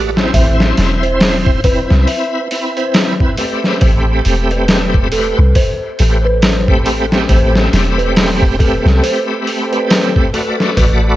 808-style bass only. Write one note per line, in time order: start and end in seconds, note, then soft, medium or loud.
0.00 0.31 A1 medium
0.34 0.73 A1 loud
0.78 1.86 E1 medium
1.91 2.06 C2 loud
3.82 4.21 A1 loud
4.26 5.33 E1 loud
5.39 5.54 C2 loud
6.00 7.27 A1 medium
7.30 7.69 A1 loud
7.73 8.81 E1 loud
8.86 9.01 C2 medium
10.77 11.16 A1 loud